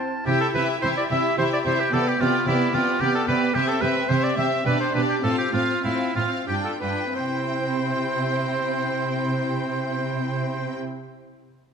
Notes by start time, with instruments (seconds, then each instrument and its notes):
0.00 oboe A5
0.26 cello section C3, viola section E4, violin section G4 E5, oboe G4
0.41 oboe A4
0.54 cello section C3, viola section E4, violin section G4 E5, oboe B4
0.82 cello section C3, viola section E4, violin section G4 E5, oboe C5
0.97 oboe D5
1.10 cello section C3, viola section E4, violin section G4 E5, oboe E5
1.38 cello section C3, viola section E4, violin section G4 E5, oboe C5
1.53 oboe D5
1.64 cello section C3, viola section E4, violin section G4 E5, oboe C5
1.81 oboe G4
1.92 cello section C3, viola section B3, violin section G4 D5, oboe A4
2.08 oboe G4
2.19 cello section C3, viola section B3, oboe F4, violin section G4 D5
2.46 cello section C3, viola section B3, oboe E4, violin section G4 D5
2.73 cello section C3, viola section B3, oboe F4, violin section G4 D5
3.00 cello section C3, viola section B3, violin section G4 D5, oboe G4
3.15 oboe A4
3.27 cello section C3, viola section B3, violin section G4 D5, oboe B4
3.54 cello section C3, viola section C4, oboe G4, violin section G4 E5
3.68 oboe A4
3.81 cello section C3, viola section C4, violin section G4 E5, oboe B4
4.09 cello section C3, viola section C4, violin section G4 E5, oboe C5
4.23 oboe D5
4.36 cello section C3, viola section C4, violin section G4 E5, oboe E5
4.65 cello section B2, viola section D4, violin section G4 D5, oboe B4
4.80 oboe C5
4.94 cello section B2, viola section D4, violin section G4 D5, oboe B4
5.09 oboe G4
5.23 cello section A2, viola section C4, violin section F4 F5, oboe A4
5.38 oboe G4
5.53 cello section A2, viola section C4, oboe F4, violin section F4 F5
5.84 cello section A2, viola section C4, oboe E4, violin section F4 F5
6.15 cello section A2, viola section C4, violin section F4 F5, oboe F4
6.47 cello section G2, viola section D4, violin section F4 G5, oboe G4
6.65 oboe A4
6.81 cello section G2, viola section D4, violin section F4 G5, oboe B4
7.15 cello section C3, viola section C4, violin section E4 G5, oboe C5